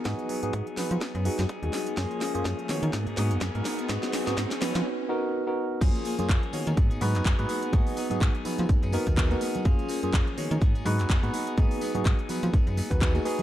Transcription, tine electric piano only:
X:1
M:4/4
L:1/16
Q:"Swing 16ths" 1/4=125
K:Abdor
V:1 name="Tine electric piano"
[CEGA]3 [CEGA]2 z [CEGc]4 [CEGA] z2 [CEGA]3 | [B,DFA]3 [B,DFA]2 z [CEGd]4 [CEGA] z2 [CEGB]3 | [CEGA]3 [CEGA]2 z [CEGc]4 [CEGB]3 [CEGB]3 | [B,DFA]3 [B,DFA]2 z [CEGd]4 [CEGc]3 [CEGc]3 |
[CEGA]3 [CEGA]2 z [CEGc]4 [CEGB]3 [CEGB]3 | [B,DFA]3 [B,DFA]2 z [CEGd]4 [CEGc]3 [CEGc]3 | [CEGA]3 [CEGA]2 z [CEGc]4 z [CEGc]2 [CEGA] [CEGA] z |]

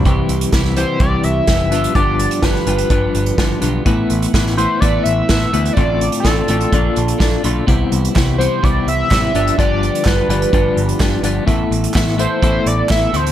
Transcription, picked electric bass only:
X:1
M:4/4
L:1/8
Q:1/4=126
K:C
V:1 name="Picked electric bass" clef=bass
C,, C,, C,,2 C,, C,, F,,, G,,, | G,,,2 G,,, G,,, G,,, G,,, G,,, B,,, | A,,, A,,, A,,,2 A,,, A,,, A,,, D,, | A,,,2 A,,, A,,, _B,,, B,,, B,,, =B,,, |
C,, C,, C,,2 C,, C,, A,,, G,,, | G,,,2 G,,, G,,, G,,, G,,, G,,, G,,, | A,,, A,,, A,,,2 A,,, A,,, A,,, D,, |]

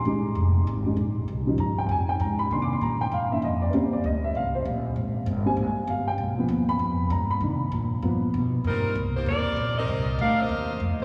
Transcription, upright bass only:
X:1
M:4/4
L:1/8
Q:"Swing" 1/4=195
K:Cm
V:1 name="Upright bass" clef=bass
A,,,2 F,,,2 A,,,2 B,,,2 | C,,2 G,,2 F,,2 A,,2 | C,2 B,,2 G,,2 F,,2 | E,, z D,,2 C,,2 B,,,2 |
A,,,2 G,,,2 A,,, z G,,,2 | =B,,,2 E,,2 F,,2 G,,2 | C,2 B,,2 G,, z =B,,2 | G,,2 C,,2 E,,2 B,,,2 |
C,,2 D,,2 E,,2 (3F,, E,, C,, |]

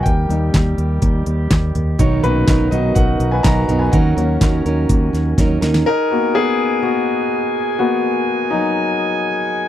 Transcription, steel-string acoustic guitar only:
X:1
M:4/4
L:1/8
Q:1/4=124
K:G#m
V:1 name="Steel-string acoustic guitar"
z8 | [B,,D,F,B,DA] [F,B,DA] [F,B,DA] [F,B,DA]3 [F,B,DA] [F,B,DA] | [D,F,CDA] [CDA] [F,CDA] [CDA]3 [F,CDA] [CDA] | z8 |
z8 |]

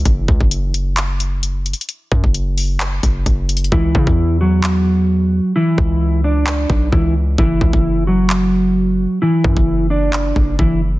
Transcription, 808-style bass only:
X:1
M:4/4
L:1/16
Q:1/4=131
K:F#m
V:1 name="808-style bass" clef=bass
F,,,2 C,, F,,,12 z | z2 F,, F,,,6- F,,, F,,,2 F,,,4 | C,,2 C, E,,12 z | z2 C,,8 B,,,2 C,,4 |
F,,,2 C,, F,,,12 z | z2 F,, F,,,6- F,,, F,,,2 F,,,4 |]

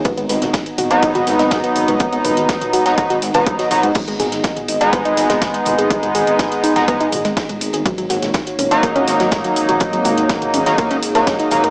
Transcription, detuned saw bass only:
X:1
M:4/4
L:1/16
Q:1/4=123
K:G#m
V:1 name="Detuned saw bass" clef=bass
G,,, G,,, G,,, G,,, G,,, z G,,, G,,, G,, G,,, G,,, G,,, G,, z G,,, G,,, | G,,, G,,, G,,, G,,, G,,, z G,,, G,,, G,, G,,, G,,, G,,, G,, z G,,, G,, | G,,, G,,, G,,, G,,, G,,, z G,,, G,,, G,, G,,, G,,, G,,, G,, z G,,, G,,, | G,,, G,,, G,,, G,,, G,,, z G,,, G,,, G,, G,,, G,,, G,,, G,, z G,,, G,,, |
G,,, G,,, G,,, G,,, G,,, z G,,, G,,, G,, G,,, G,,, G,,, G,, z G,,, G,,, | G,,, G,,, G,,, G,,, G,,, z G,,, G,,, G,, G,,, G,,, G,,, G,, z G,,, G,, |]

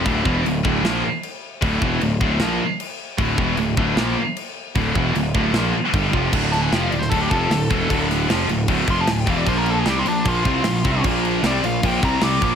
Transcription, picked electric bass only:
X:1
M:4/4
L:1/8
Q:1/4=153
K:Dm
V:1 name="Picked electric bass" clef=bass
D,,, E,,, D,,, D,,, B,,, z3 | D,,, E,,, D,,, D,,, B,,, z3 | D,,, E,,, D,,, D,,, B,,, z3 | D,,, E,,, D,,, D,,, B,,, z G,,, F,,, |
D,,,2 F,,, D,,, D,,, F,,, D,,, E,,, | D,,,2 F,,, D,,, D,,, F,,, D,,, E,,, | B,,,2 C,, B,,, B,,, C,, B,,, C,, | B,,,2 C,, B,,, B,,, C,, C,, B,,, |]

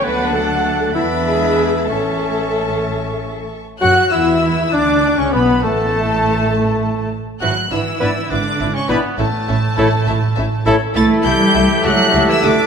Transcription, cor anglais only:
X:1
M:6/8
L:1/16
Q:3/8=67
K:A
V:1 name="Cor anglais"
f6 e6 | c8- c z3 | F2 E4 D3 C B,2 | A,8- A,2 z2 |
F2 E4 D3 C B,2 | A,8- A,2 z2 | [K:Ador] A2 G4 F3 E D2 |]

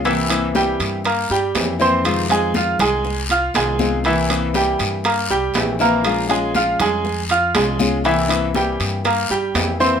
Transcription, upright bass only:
X:1
M:4/4
L:1/8
Q:1/4=120
K:Cphr
V:1 name="Upright bass" clef=bass
C,,3 G,,2 G,, F,,2- | F,,3 C,,3 C,,2- | C,,3 G,,2 C,, B,,,2- | B,,,3 F,,3 C,,2- |
C,,3 G,,2 G,, F,,2 |]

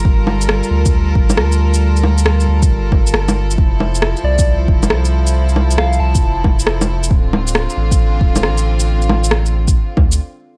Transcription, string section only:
X:1
M:4/4
L:1/8
Q:"Swing 16ths" 1/4=136
K:Gdor
V:1 name="String section"
[G,FAB]8- | [G,FAB]8 | [F,E]8- | [F,E]8 |
[D,CF]8- | [D,CF]6 z2 |]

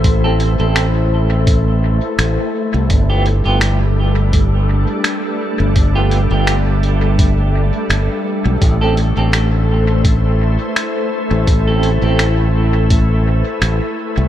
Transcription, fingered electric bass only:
X:1
M:4/4
L:1/16
Q:"Swing 16ths" 1/4=84
K:Am
V:1 name="Fingered electric bass" clef=bass
A,,,3 A,,,8 z A,,, z2 C,, | G,,,3 G,,,8 z4 G,,,- | G,,,3 G,,,8 z G,,, z2 B,,, | A,,,3 A,,,8 z4 A,,,- |
A,,,3 A,,,8 z A,,, z2 C,, |]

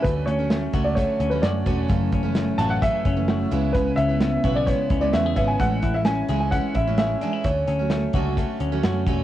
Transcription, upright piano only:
X:1
M:4/4
L:1/16
Q:1/4=130
K:Dlyd
V:1 name="Upright piano"
B2 c4- c d c3 B d3 z | z6 a f e8 | B2 e4- e d c3 d e2 e g | f3 e g3 g f2 e2 e4 |
c4 z12 |]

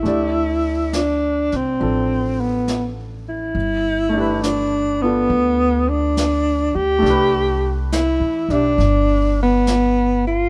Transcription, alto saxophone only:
X:1
M:4/4
L:1/8
Q:"Swing" 1/4=69
K:C
V:1 name="Alto saxophone"
E2 D C2 B, z E- | E2 D B,2 D2 G- | G z E D2 B,2 F |]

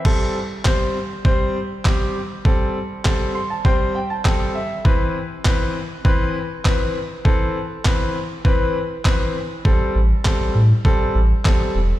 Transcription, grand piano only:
X:1
M:4/4
L:1/16
Q:1/4=100
K:Am
V:1 name="Grand piano"
[G,CA]2 z2 [G,Cc]2 z2 [G,Cc]2 z2 [G,CG]2 z2 | [G,CA]2 z2 [G,CA]2 c' a [G,Ccg]2 g a [G,CAg]2 e2 | [E,CB]2 z2 [E,CB]2 z2 [E,CB]2 z2 [E,CB]2 z2 | [E,CA]2 z2 [E,CB]2 z2 [E,CB]2 z2 [E,CB]2 z2 |
[G,CA]2 z2 [G,CA]2 z2 [G,CA]2 z2 [G,CA]2 z2 |]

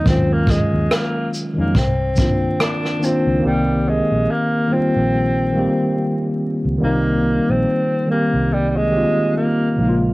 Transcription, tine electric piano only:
X:1
M:4/4
L:1/16
Q:"Swing 16ths" 1/4=71
K:Cphr
V:1 name="Tine electric piano"
[E,_G,A,DF]4- [E,G,A,DF] z2 [E,G,A,DE] z2 [E,B,C=DF]3 z [E,B,CDF]2 | [E,B,CG]4- [E,B,CG] z [E,G,B,CF]3 z [E,G,B,CG]4- [E,G,B,CG] z | [E,G,B,CE]4- [E,G,B,CE] z [E,G,B,CG]3 z [E,B,CFG]3 z [D,F,A,B,EF]2 |]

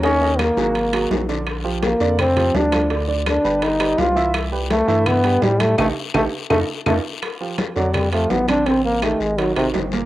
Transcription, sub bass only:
X:1
M:4/4
L:1/8
Q:1/4=167
K:Gm
V:1 name="Sub bass" clef=bass
E,,3 _A,,,3 B,,,2- | B,,,3 F,,3 D,,2- | D,,3 G,,,3 C,,2- | C,,3 G,,3 A,,2 |
A,,, z A,,, z F,, z F,, z | [K:Fmix] z3 F,,3 A,,,2- | A,,,3 _A,,,2 A,,, G,,,2 |]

